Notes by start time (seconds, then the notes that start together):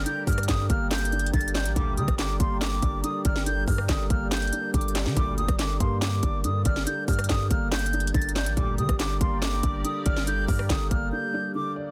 Already playing: D3 G3 A#3 D4 G4 A#4 D5
0.06 D3 G6, closed hi-hat
0.27 G2 G3 F6, kick, closed hi-hat, open hi-hat
0.33 closed hi-hat
0.38 cross-stick, closed hi-hat
0.43 closed hi-hat
0.48 G2 D3 D#6, kick, snare, clap, closed hi-hat
0.70 G1 A#3 F6, kick, closed hi-hat
0.91 D3 G6, snare, clap, closed hi-hat
0.98 closed hi-hat
1.05 closed hi-hat
1.12 D4, closed hi-hat
1.19 closed hi-hat
1.26 closed hi-hat
1.34 G1 D3 A6, kick, closed hi-hat
1.41 closed hi-hat
1.48 closed hi-hat
1.55 D5 G6, snare, clap, closed hi-hat
1.66 A1, closed hi-hat
1.76 G1 D2 A#2 D3 G3 D6, kick, closed hi-hat
1.97 D3 G3 D#6, closed hi-hat
2.08 G1, kick, cross-stick, closed hi-hat
2.19 D3 D6, snare, clap, closed hi-hat
2.40 G1 A#3 C6, kick, closed hi-hat
2.61 D3 D6, snare, clap, closed hi-hat
2.82 G1 D4, kick, closed hi-hat
3.04 D3 D#6, closed hi-hat
3.25 G1 D5 F6, kick, closed hi-hat
3.36 snare
3.46 D3 G6, closed hi-hat
3.68 G2 G3 F6, kick, open hi-hat
3.78 cross-stick
3.89 G1 D3 D#6, kick, snare, clap, closed hi-hat
4.10 G1 A#3 F6, kick, closed hi-hat
4.31 D3 G6, snare, clap, closed hi-hat
4.37 closed hi-hat
4.42 closed hi-hat
4.47 closed hi-hat
4.53 D4, closed hi-hat
4.74 G1 D3 D6, kick, closed hi-hat
4.81 closed hi-hat
4.88 closed hi-hat
4.95 D5, snare, clap, closed hi-hat
5.06 D3, snare
5.17 G1 D2 A#2 D3 G3 D6, kick, closed hi-hat
5.38 G3 D#6, closed hi-hat
5.48 G1, kick, cross-stick, closed hi-hat
5.59 D3 D6, snare, clap, closed hi-hat
5.80 G2 A#3 C6, kick, closed hi-hat
6.02 D3 D6, snare, clap, closed hi-hat
6.23 G1 D4, kick, closed hi-hat
6.44 G2 D3 D#6, closed hi-hat
6.65 G1 D5 F6, kick, closed hi-hat
6.76 snare
6.87 D3 G6, closed hi-hat
7.08 G2 G3 F6, kick, closed hi-hat, open hi-hat
7.13 closed hi-hat
7.19 cross-stick, closed hi-hat
7.24 closed hi-hat
7.29 G2 D3 D#6, kick, snare, clap, closed hi-hat
7.51 G1 A#3 F6, kick, closed hi-hat
7.72 D3 G6, snare, clap, closed hi-hat
7.79 closed hi-hat
7.86 closed hi-hat
7.93 D4, closed hi-hat
8.00 closed hi-hat
8.07 closed hi-hat
8.14 G1 D3 A6, kick, closed hi-hat
8.22 closed hi-hat
8.29 closed hi-hat
8.36 D5 G6, snare, clap, closed hi-hat
8.46 A1, closed hi-hat
8.57 G1 D2 A#2 D3 G3 G4 A#4 D5 D6, kick, closed hi-hat
8.78 D3 G3 D#6, closed hi-hat
8.89 G1, kick, cross-stick, closed hi-hat
9.00 D3 D6, snare, clap, closed hi-hat
9.21 G1 A#3 C6, kick, closed hi-hat
9.42 D3 D6, snare, clap, closed hi-hat
9.63 G1 D4, kick, closed hi-hat
9.85 D3 D#6, closed hi-hat
10.06 G1 D5 F6, kick, closed hi-hat
10.17 snare
10.27 D3 G6, closed hi-hat
10.48 G2 G3 F6, kick, open hi-hat
10.59 cross-stick
10.70 G1 D3 D#6, kick, snare, clap, closed hi-hat
10.91 G1 A#3 F6, kick, closed hi-hat
11.12 D3 G6
11.34 D4
11.55 D3 D6
11.76 D5